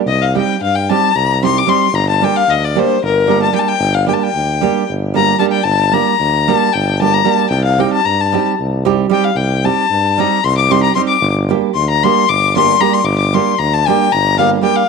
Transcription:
0.05 C2 D#5
0.22 F5
0.35 G3 C4 D#4 G4 G5
0.61 G2 F5
0.75 G5
0.90 G3 C4 D#4 G4 A5
1.15 C2 A#5
1.42 G3 C4 D#4 G4 C6
1.58 D6
1.67 G3 C4 D#4 G4 C6
1.92 G1 A#5
2.09 A5
2.21 G3 A#3 D4 G4 G5
2.36 F5
2.47 D2 D#5
2.64 D5
2.75 G3 A#3 D4 G4 C5
3.02 G1 A#4
3.27 G3 A#3 D4 G4 A#5
3.42 A5
3.52 G3 A#3 D4 G4 G5
3.58 A5
3.68 G5
3.78 G1
3.94 F5
4.06 G3 A#3 D4 G4 G5
4.13 A5
4.23 G5
4.34 D2
4.61 G3 A#3 D4 G4
4.89 G1
5.14 G3 A#3 D4 G4 A#5
5.39 G3 A#3 D4 G4 A5
5.51 G5
5.63 G1 A5
5.92 G3 A#3 D4 G4 A#5
6.19 D2
6.47 G3 A#3 D4 G4 A5
6.73 G1 G5
7.00 G3 A#3 D4 G4 A5
7.14 A#5
7.24 G3 A#3 D4 G4 A5
7.50 C2 G5
7.64 F5
7.78 G3 C4 D#4 G4 G5
7.93 A5
8.05 G2 A#5
8.21 A5
8.32 G3 C4 D#4 G4
8.59 C2
8.85 G3 C4 D#4 G4
9.10 G3 C4 D#4 G4 G5
9.24 F5
9.35 C2 G5
9.64 G3 C4 D#4 G4 A5
9.90 G2
10.18 G3 C4 D#4 G4 A#5
10.44 C2 C6
10.57 D6
10.70 G3 C4 D#4 G4 C6
10.83 A#5
10.95 G3 C4 D#4 G4 C6
11.08 D6
11.21 G1
11.49 G3 A#3 D4 G4
11.74 D2 C6
11.90 A#5
12.03 G3 A#3 D4 G4 C6
12.29 G1 D6
12.55 G3 A#3 D4 G4 C6
12.80 G3 A#3 D4 G4 A#5
12.94 C6
13.04 G1 D6
13.18 D6
13.34 G3 A#3 D4 G4 C6
13.58 D2 A#5
13.73 A5
13.86 G3 A#3 D4 G4 G5
14.12 G1 A#5
14.38 G3 A#3 D4 G4 F5
14.61 G3 A#3 D4 G4 G5
14.76 F5

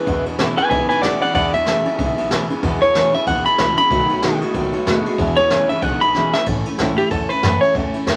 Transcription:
Already playing: B4
0.06 E2 B2 E3 G#3 B3 E4, kick, ride
0.25 E2 B2 E3 G#3 B3 E4, ride
0.39 E2 B2 C#3 E3 G#3 B3 E4, snare, ride
0.57 E2 C#3 E3 G#3 B3 E4 B4 G#5, muted upright bass stroke, ride
0.69 B1 E2 B2 E3 G#3 B3 E4 B4 G#5, kick, ride
0.89 E2 B2 E3 G#3 B3 E4 B4 G#5, ride
1.02 E2 B2 C#3 E3 G#3 B3 E4 D5 F#5, snare, ride
1.21 E2 C#3 E3 G#3 B3 E4 D5 F#5, muted upright bass stroke, ride
1.34 E2 B2 E3 G#3 B3 E4 D5 F#5, kick, ride
1.53 E2 B2 E3 G#3 B3 E4 E5, ride
1.66 E2 B2 C#3 E3 G#3 B3 E4, snare, ride
1.85 E2 C#3 E3 G#3 B3 E4, muted upright bass stroke, ride
1.98 B1 E2 B2 E3 G#3 B3 E4, kick, ride
2.18 E2 B2 E3 G#3 B3 E4, ride
2.31 E2 B2 C#3 E3 G#3 B3 E4, snare, ride
2.50 E2 C#3 E3 G#3 B3 E4, muted upright bass stroke, ride
2.63 E2 B2 E3 G#3 B3 E4, kick, ride
2.81 E2 B2 E3 B3 E4 C#5, ride
2.94 E2 B2 C#3 E3 G#3 B3 E4, snare, ride
3.13 E2 C#3 E3 G#3 B3 E4 E5, muted upright bass stroke, ride
3.27 D#2 E2 B2 E3 G#3 B3 E4 F#5, kick, ride
3.45 E2 B2 E3 G#3 B3 E4 B5, muted upright bass stroke, ride
3.58 C#2 E2 B2 C#3 E3 G#3 B3 E4, snare, ride
3.77 E2 C#3 E3 G#3 B3 E4 B5, ride
3.90 B1 B2 D#3 F#3 A3 B3 F#4, kick, ride
4.09 B2 F#3 A3 B3 F#4, ride
4.22 B2 D#3 G#3 A3 B3 F#4, snare, ride
4.40 B2 G#3 A3 B3 F#4, muted upright bass stroke, ride
4.54 C#2 B2 D#3 F#3 A3 B3 F#4, kick, ride
4.73 B2 F#3 A3 B3 F#4, muted upright bass stroke, ride
4.86 D#2 B2 D#3 G#3 A3 B3 F#4, snare, ride
5.05 B2 G#3 A3 B3 F#4, ride
5.18 E2 B2 E3 G#3 B3 E4, kick, ride
5.37 E2 B2 E3 G#3 B3 E4 C#5, ride
5.50 E2 B2 C#3 E3 G#3 B3 E4, snare, ride
5.69 E2 C#3 E3 G#3 B3 E4 E5, muted upright bass stroke, ride
5.82 B1 E2 B2 E3 G#3 B3 E4 F#5, kick, ride
6.01 E2 B2 E3 G#3 B3 E4 B5, ride
6.14 E2 B2 C#3 E3 G#3 B3 E4, snare
6.33 E2 C#3 E3 G#3 B3 E4 E5, muted upright bass stroke, snare
6.46 A1 A2 E3 A3 C#4 E4, kick, ride
6.65 A3 C#4 E4, ride
6.78 C#2 A2 E3 A3 C#4 E4, snare, ride
6.97 A3 C#4 E4 G4, ride
7.10 E2 E3 A3 C#4 E4 A4, kick, ride
7.29 C#4 E4 B4, ride
7.33 A3
7.43 F#2 A2 E3 A3 C#4 E4, snare, ride
7.61 A3 C#4 E4 C#5, ride
7.75 E2 A2 E3 A3 C#4 E4, kick, ride
7.94 A3 C#4 E4, ride
8.06 D#2 A2 E3 A3 C#4 E4, snare, ride

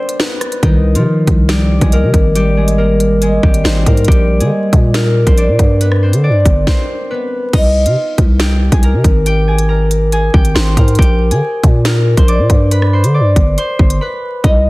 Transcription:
Already playing: C4 D4 C5 D5
0.09 closed hi-hat
0.20 B3 B4, snare
0.41 cross-stick, closed hi-hat
0.52 closed hi-hat
0.62 C2 D#3 D#4, kick, closed hi-hat
0.95 C3 F3 F4, closed hi-hat
1.27 C2, kick, closed hi-hat
1.48 G3 G4, snare, closed hi-hat
1.81 C2 G#3 G#4, kick, closed hi-hat
1.92 A#3 A#4, closed hi-hat
2.03 C3
2.14 G#1, kick, closed hi-hat
2.35 G3 G4, closed hi-hat
2.57 G#3 G#4
2.68 closed hi-hat
2.78 A#3 A#4
3.00 closed hi-hat
3.22 G#3 G#4, closed hi-hat
3.43 G#1 G3 G4, kick
3.54 closed hi-hat
3.64 G#1 C4 C5, snare
3.86 G#2 A#3 A#4, kick, closed hi-hat
3.97 closed hi-hat
4.04 A#1 G4, kick, closed hi-hat
4.09 G3, closed hi-hat
4.40 D3 G#3 G#4, closed hi-hat
4.73 A#2, kick, closed hi-hat
4.94 A#3 A#4, snare, closed hi-hat
5.27 A#1 C4 C5, kick, closed hi-hat
5.38 D4 D5, closed hi-hat
5.48 A#2
5.59 G2, kick, closed hi-hat
5.81 B3 B4, closed hi-hat
5.92 cross-stick
6.03 C4 C5
6.13 D3, closed hi-hat
6.24 D4 D5
6.29 G2
6.45 G1, kick, closed hi-hat
6.67 C4 C5, kick, snare
7.11 B3 B4
7.53 C2 D#4 D#5, kick, closed hi-hat, crash
7.86 C3 F4 F5, closed hi-hat
8.18 C2, kick, closed hi-hat
8.39 G4 G5, snare, closed hi-hat
8.72 C2 G#4 G#5, kick, closed hi-hat
8.83 A#4 A#5, closed hi-hat
8.94 C3
9.04 G#1, kick, closed hi-hat
9.26 G4 G5, closed hi-hat
9.48 G#4 G#5
9.58 closed hi-hat
9.69 A#4 A#5
9.91 closed hi-hat
10.12 G#4 G#5, closed hi-hat
10.34 G#1 G4 G5, kick
10.45 closed hi-hat
10.55 G#1 C5 C6, snare
10.77 G#2 A#4 A#5, kick, closed hi-hat
10.88 closed hi-hat
10.95 A#1 G5, kick, closed hi-hat
11.00 G4, closed hi-hat
11.31 D3 G#4 G#5, closed hi-hat
11.63 A#2, kick, closed hi-hat
11.85 A#4 A#5, snare, closed hi-hat
12.17 A#1 C5 C6, kick, closed hi-hat
12.28 D5 D6, closed hi-hat
12.39 A#2
12.50 G2, kick, closed hi-hat
12.71 B4 B5, closed hi-hat
12.82 cross-stick
12.93 C5 C6
13.04 D3, closed hi-hat
13.14 D5 D6
13.20 G2
13.36 G1, kick, closed hi-hat
13.58 C5 C6, closed hi-hat
13.79 G1, kick
13.90 closed hi-hat
14.01 B4 B5
14.44 C2 D#4 D#5, kick, closed hi-hat

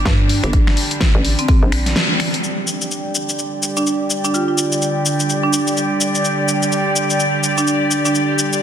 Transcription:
Already playing: D3 G3 D4
0.05 G2, kick, snare, closed hi-hat
0.29 open hi-hat
0.43 G1 D4, finger snap, closed hi-hat
0.53 kick, closed hi-hat
0.67 finger snap, snare
0.77 open hi-hat
0.91 closed hi-hat
1.01 kick, snare, closed hi-hat
1.15 A1
1.25 open hi-hat
1.39 C4, closed hi-hat
1.48 C4, kick, open hi-hat
1.63 A#1
1.72 finger snap, open hi-hat
1.86 snare, closed hi-hat
1.96 snare, closed hi-hat
2.20 finger snap, open hi-hat
2.34 closed hi-hat
2.44 D3 G3 G4 D5, shaker
2.67 shaker
2.82 shaker
2.91 shaker
3.15 shaker
3.29 shaker
3.39 shaker
3.63 shaker
3.77 D4, shaker
3.87 shaker
4.10 shaker
4.25 D4, shaker
4.34 F4, shaker
4.48 F4
4.58 shaker
4.72 shaker
4.82 shaker
5.06 shaker
5.20 shaker
5.30 shaker
5.43 D4
5.53 shaker
5.67 shaker
5.77 shaker
6.01 shaker
6.15 shaker
6.25 shaker
6.48 shaker
6.63 shaker
6.72 shaker
6.96 shaker
7.10 shaker
7.20 shaker
7.44 shaker
7.58 D4, shaker
7.67 shaker
7.91 shaker
8.05 D4, shaker
8.15 shaker
8.39 shaker
8.53 shaker

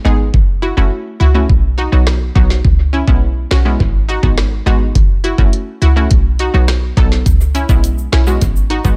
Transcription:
0.05 G#1 G#3 B3 D#4 G#4
0.34 F#1, kick
0.62 E4 F#4
0.77 F#1 A3 C#4 E4 F#4
1.20 C#2 E4 F#4
1.34 A3 C#4 E4 F#4
1.49 B1, kick
1.78 D#4 F#4
1.92 B1 F#3 B3 D#4 F#4
2.07 cross-stick, snare
2.35 B1 F#3 B3 D#4 F#4, kick
2.50 snare
2.65 C#2, kick
2.93 C#4 E4
3.07 B1 G#3 B3 C#4 E4, kick
3.51 B1 C#4 F#4, cross-stick, snare
3.65 G#3 B3 C#4 E4
3.80 G#1, kick
4.09 D#4 F#4
4.23 G#1 G#3 B3 D#4 F#4, kick
4.38 cross-stick, snare
4.66 G#1 G#3 B3 D#4 F#4
4.95 F#1, kick, closed hi-hat
5.24 E4 F#4, closed hi-hat
5.38 F#1 A3 C#4 E4 F#4, kick
5.53 closed hi-hat
5.82 C#2 E4 F#4, closed hi-hat
5.96 A3 C#4 E4 F#4
6.11 B1, kick, closed hi-hat
6.39 D#4 F#4, closed hi-hat
6.54 B1 F#3 B3 D#4 F#4
6.68 cross-stick, snare, closed hi-hat
6.97 B1 F#3 B3 D#4 A4, kick, closed hi-hat
7.12 snare
7.26 C#2, kick, closed hi-hat, shaker
7.41 shaker
7.55 C#4 E4, closed hi-hat, shaker
7.69 B1 G#3 B3 C#4 E4, kick, shaker
7.84 closed hi-hat, shaker
7.98 shaker
8.12 B1 C#4 E4, cross-stick, snare, closed hi-hat
8.27 G#3 B3 C#4 F#4, shaker
8.41 G#1, kick, closed hi-hat, shaker
8.56 shaker
8.70 D#4 F#4, closed hi-hat
8.84 G#1 G#3 B3 D#4 F#4, kick, shaker

